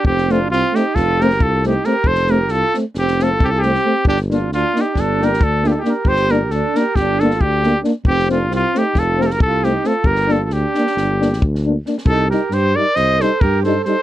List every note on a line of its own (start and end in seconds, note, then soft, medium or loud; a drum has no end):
0.04 0.51 F1 medium
0.04 0.33 C4 medium
0.04 0.33 G4 medium
0.04 kick medium
0.18 snare soft
0.29 0.38 A3 medium
0.29 0.39 C4 medium
0.29 0.50 D4 medium
0.29 0.50 F4 medium
0.29 snare soft
0.49 0.63 C2 medium
0.49 0.78 C4 medium
0.49 0.77 F4 loud
0.49 snare soft
0.73 0.81 A3 medium
0.73 0.85 C4 soft
0.73 0.96 D#4 medium
0.73 0.97 G4 medium
0.73 snare soft
0.95 1.43 F1 loud
0.95 1.21 F4 medium
0.95 1.24 A4 loud
0.95 kick medium
0.95 snare soft
1.20 1.29 A3 medium
1.20 1.29 C4 medium
1.20 1.42 G4 medium
1.20 1.44 A#4 loud
1.20 snare soft
1.30 snare soft
1.40 1.76 C2 loud
1.40 1.63 F4 medium
1.40 1.65 A4 medium
1.40 kick medium
1.63 1.73 A3 medium
1.63 1.73 C4 medium
1.63 1.87 D#4 medium
1.63 snare soft
1.67 1.87 G4 medium
1.84 1.93 A3 medium
1.84 1.94 C4 medium
1.84 2.08 G4 medium
1.84 2.09 A#4 loud
1.84 snare soft
2.04 2.51 F1 medium
2.04 2.32 A4 medium
2.04 2.32 C5 loud
2.04 kick medium
2.15 snare soft
2.27 2.37 A3 medium
2.27 2.38 C4 medium
2.27 2.53 G4 medium
2.27 2.52 A#4 medium
2.27 snare soft
2.48 2.63 C2 medium
2.48 2.75 F4 medium
2.48 2.75 A4 loud
2.48 snare soft
2.74 2.84 A3 medium
2.74 2.83 C4 soft
2.74 snare soft
2.94 3.42 F1 medium
2.94 3.23 C4 medium
2.94 snare soft
2.99 3.24 G4 loud
3.08 snare soft
3.19 3.29 A3 medium
3.19 3.29 C4 medium
3.19 3.45 F4 medium
3.19 3.46 A4 medium
3.19 snare soft
3.40 3.76 C2 medium
3.40 3.52 C4 medium
3.40 3.49 G4 loud
3.40 kick medium
3.47 3.63 F4 medium
3.47 3.60 A4 medium
3.58 4.07 C4 medium
3.58 4.06 G4 loud
3.63 3.72 A3 medium
3.63 3.73 C4 soft
3.63 snare soft
3.74 snare soft
3.85 3.93 A3 medium
3.85 3.94 C4 soft
4.04 4.52 G1 medium
4.04 4.18 D4 medium
4.04 kick medium
4.09 4.19 G4 loud
4.17 snare soft
4.29 4.38 A#3 medium
4.29 4.39 D4 medium
4.29 4.51 D4 medium
4.29 snare soft
4.33 4.51 F4 medium
4.50 4.64 D2 medium
4.50 4.76 D4 medium
4.50 4.82 F4 loud
4.50 snare soft
4.74 4.82 A#3 medium
4.74 4.84 D4 soft
4.74 4.95 D#4 medium
4.74 snare soft
4.81 5.02 G4 medium
4.93 5.43 G1 medium
4.93 5.24 D4 medium
4.93 kick medium
4.93 snare soft
5.00 5.26 A4 medium
5.20 5.29 A#3 medium
5.20 5.30 D4 medium
5.20 5.44 G4 medium
5.20 snare soft
5.24 5.45 A#4 medium
5.33 snare soft
5.41 5.77 D2 loud
5.41 5.65 D4 medium
5.41 5.69 A4 medium
5.41 kick medium
5.63 5.71 A#3 medium
5.63 5.74 D4 medium
5.63 5.69 D#4 medium
5.63 snare soft
5.67 5.78 F4 medium
5.67 5.72 G4 medium
5.67 5.80 A4 medium
5.76 5.85 D#4 medium
5.76 5.91 G4 medium
5.83 5.92 A#3 medium
5.83 5.93 D4 medium
5.83 6.05 G4 medium
5.83 snare soft
5.89 6.10 A#4 medium
6.05 6.50 G1 medium
6.05 6.30 G4 medium
6.05 6.32 C5 loud
6.05 kick medium
6.16 snare soft
6.28 6.37 A#3 medium
6.28 6.39 D4 medium
6.28 6.55 G4 medium
6.28 6.53 A#4 medium
6.28 snare soft
6.49 6.63 D2 medium
6.49 6.78 A4 medium
6.49 snare soft
6.53 6.81 D4 medium
6.74 6.83 A#3 medium
6.74 6.83 D4 medium
6.74 6.97 A#4 medium
6.74 snare soft
6.80 7.02 G4 medium
6.95 7.43 G1 medium
6.95 7.22 G4 medium
6.95 kick medium
6.95 snare soft
7.01 7.26 D4 medium
7.20 7.30 A#3 medium
7.20 7.29 D4 medium
7.20 7.43 A4 medium
7.20 snare soft
7.24 7.46 F4 medium
7.30 snare soft
7.41 7.77 D2 medium
7.41 7.81 D4 medium
7.41 7.79 G4 loud
7.41 kick medium
7.63 7.73 A#3 medium
7.63 7.73 D4 medium
7.63 snare soft
7.83 7.92 A#3 medium
7.83 7.92 D4 medium
7.83 snare soft
8.04 8.51 F1 medium
8.04 8.28 C4 medium
8.04 8.29 G4 loud
8.04 kick medium
8.19 snare soft
8.28 8.38 A3 medium
8.28 8.37 C4 medium
8.28 8.48 D4 medium
8.28 8.51 F4 medium
8.28 snare soft
8.48 8.63 C2 medium
8.48 8.78 C4 medium
8.48 snare soft
8.55 8.80 F4 loud
8.73 8.84 A3 medium
8.73 8.82 C4 soft
8.73 8.99 D#4 medium
8.73 snare soft
8.78 9.01 G4 medium
8.94 9.42 F1 medium
8.94 9.25 F4 medium
8.94 kick medium
8.94 snare soft
8.99 9.24 A4 loud
9.17 9.28 A3 medium
9.17 9.27 C4 medium
9.17 snare soft
9.22 9.28 G4 medium
9.22 9.28 A#4 medium
9.27 9.35 F4 medium
9.27 9.34 A4 medium
9.27 snare soft
9.32 9.43 G4 soft
9.32 9.41 A#4 medium
9.40 9.76 C2 medium
9.40 9.66 A4 medium
9.40 kick medium
9.45 9.69 F4 medium
9.63 9.72 A3 medium
9.63 9.72 C4 medium
9.63 9.89 G4 medium
9.63 snare soft
9.67 9.89 D#4 medium
9.84 9.93 A3 medium
9.84 9.93 C4 medium
9.84 10.08 F4 medium
9.84 10.08 A4 medium
9.84 snare soft
10.03 10.52 G1 medium
10.03 10.33 G4 medium
10.03 10.33 A#4 medium
10.03 kick medium
10.16 snare soft
10.28 10.37 A#3 medium
10.28 10.37 D4 medium
10.28 snare soft
10.32 10.43 F4 medium
10.32 10.44 A4 medium
10.43 10.54 F4 soft
10.43 10.55 A4 medium
10.50 10.64 D2 medium
10.50 11.43 D4 medium
10.50 11.43 G4 medium
10.50 snare soft
10.74 10.85 A#3 medium
10.74 10.83 D4 soft
10.74 snare soft
10.87 snare soft
10.95 11.42 G1 medium
10.95 snare soft
11.20 11.30 A#3 medium
11.20 11.29 D4 medium
11.20 snare soft
11.33 snare soft
11.40 11.76 D2 medium
11.40 kick medium
11.55 snare soft
11.65 11.75 A#3 medium
11.65 11.74 D4 medium
11.86 11.95 A#3 soft
11.86 11.95 D4 soft
11.86 snare soft
11.98 snare soft
12.06 12.31 C2 loud
12.06 12.29 D#4 medium
12.06 12.30 A4 loud
12.06 kick medium
12.29 12.39 G3 soft
12.29 12.40 D#4 medium
12.29 12.51 G4 medium
12.29 12.55 A#4 medium
12.29 snare soft
12.50 12.76 G2 medium
12.50 12.77 G4 medium
12.50 12.77 C5 loud
12.50 snare soft
12.75 12.84 G3 medium
12.75 12.86 D#4 soft
12.75 12.96 A#4 medium
12.75 12.97 D5 loud
12.95 13.22 C2 medium
12.95 13.21 C5 loud
12.95 13.23 D#5 loud
12.95 snare soft
13.20 13.30 G3 medium
13.20 13.31 D#4 medium
13.20 13.45 A4 medium
13.20 13.42 C5 medium
13.20 snare soft
13.41 13.78 G2 medium
13.41 13.64 G4 medium
13.41 13.63 A#4 loud
13.41 kick loud
13.63 13.74 G3 medium
13.63 13.75 D#4 medium
13.63 13.85 A4 medium
13.63 13.84 C5 medium
13.63 snare soft
13.84 13.94 G3 medium
13.84 13.96 D#4 medium
13.84 14.02 A4 medium
13.84 14.02 C5 loud
13.84 snare soft